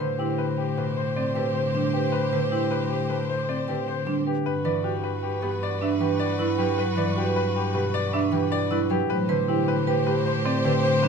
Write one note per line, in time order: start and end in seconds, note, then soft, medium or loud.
0.00 4.34 A2 medium
0.00 1.34 D3 medium
0.00 1.73 G3 medium
0.00 4.21 G4 medium
0.00 0.25 B4 medium
0.00 0.25 C5 medium
0.00 4.22 C5 medium
0.19 0.45 E4 medium
0.19 0.44 G4 medium
0.38 0.64 B4 medium
0.58 0.83 G4 medium
0.78 4.47 B2 medium
0.78 1.03 B4 medium
0.97 1.22 C5 medium
1.16 1.42 C4 medium
1.16 1.42 D5 medium
1.35 2.31 D3 medium
1.35 1.61 G4 medium
1.35 1.61 B4 medium
1.55 1.80 C5 medium
1.74 4.05 G3 medium
1.74 2.00 D4 medium
1.93 2.19 G4 medium
1.93 2.19 B4 medium
2.12 2.38 B4 medium
2.32 3.66 D3 medium
2.32 2.58 B4 medium
2.32 2.58 C5 medium
2.52 2.77 E4 medium
2.52 2.77 G4 medium
2.71 2.96 B4 medium
2.90 3.15 G4 medium
3.10 7.00 A3 medium
3.10 3.35 B4 medium
3.29 3.55 C5 medium
3.49 3.74 C4 medium
3.49 3.74 D5 medium
3.68 4.47 D3 medium
3.68 3.93 G4 medium
3.68 3.93 B4 medium
3.88 4.13 C5 medium
4.06 6.38 G3 medium
4.06 4.32 D4 medium
4.26 4.52 G4 medium
4.26 4.51 B4 medium
4.46 8.98 G2 medium
4.46 8.87 F#4 medium
4.46 8.87 B4 medium
4.46 4.71 B4 medium
4.65 5.99 E3 medium
4.65 4.90 B4 medium
4.65 4.90 D5 medium
4.84 5.09 F#4 medium
4.84 5.09 G4 medium
5.04 5.29 B4 medium
5.23 5.48 G4 medium
5.42 9.11 B3 medium
5.42 5.67 G4 medium
5.42 5.68 B4 medium
5.63 5.87 D5 medium
5.81 6.06 D4 medium
5.81 6.07 E5 medium
6.00 6.95 E3 medium
6.00 6.26 G4 medium
6.00 6.26 B4 medium
6.20 6.45 D5 medium
6.39 8.69 G3 medium
6.39 6.64 E4 medium
6.39 6.64 B4 medium
6.58 8.88 F#3 medium
6.58 6.83 G4 medium
6.58 6.84 B4 medium
6.79 7.03 B4 medium
6.97 8.30 E3 medium
6.97 7.22 B4 medium
6.97 7.22 D5 medium
7.17 7.42 F#4 medium
7.17 7.42 G4 medium
7.36 7.61 B4 medium
7.56 7.81 G4 medium
7.74 11.08 B2 medium
7.74 8.00 G4 medium
7.74 8.00 B4 medium
7.94 8.19 D5 medium
8.13 8.39 D4 medium
8.13 8.38 E5 medium
8.32 9.11 E3 medium
8.32 8.58 G4 medium
8.32 8.58 B4 medium
8.52 8.77 D5 medium
8.71 11.02 G3 medium
8.71 8.96 E4 medium
8.71 8.97 B4 medium
8.90 9.11 F#3 medium
8.90 9.16 G4 medium
8.90 9.16 B4 medium
9.10 11.08 A2 medium
9.10 11.08 G4 medium
9.10 9.35 B4 medium
9.10 11.08 C5 medium
9.29 10.63 D3 medium
9.29 9.54 B4 medium
9.29 9.54 C5 medium
9.48 9.74 E4 medium
9.48 9.74 G4 medium
9.68 9.93 B4 medium
9.87 10.13 G4 medium
9.87 10.13 B4 loud
10.06 11.08 A3 medium
10.06 10.32 G4 medium
10.06 10.32 B4 medium
10.26 10.51 C5 medium
10.45 10.71 C4 loud
10.45 10.70 D5 medium
10.64 11.08 D3 medium
10.64 10.90 G4 medium
10.64 10.90 B4 medium
10.84 11.08 C5 medium
11.03 11.08 G3 medium
11.03 11.08 D4 medium
11.03 11.08 B4 medium